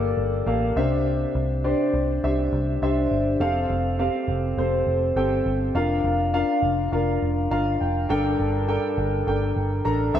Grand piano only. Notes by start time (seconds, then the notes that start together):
Already playing: G2 A#3 G4 A4 D5
0.46 A#3 G4 A4 F5
0.76 C3 D4 G4 C5 E5
1.64 D4 G4 C5 D5
2.23 D4 G4 C5 E5
2.82 D4 G4 C5 E5
3.40 C4 G4 A4 F5
3.99 C4 G4 A4 F5
4.58 C4 G4 A4 C5
5.16 C4 G4 A4 G5
5.75 D4 F4 A#4 F5
6.34 D4 F4 A#4 F5
6.92 D4 F4 A#4 F5
7.51 D4 F4 A#4 F5 A#5
7.80 G5
8.09 G2 D4 A4 A#4 G5
8.68 D4 A4 A#4 G5
9.27 D4 A4 A#4 G5
9.85 D4 A4 A#4 A#5
10.14 C3 D4 G4 C5 E5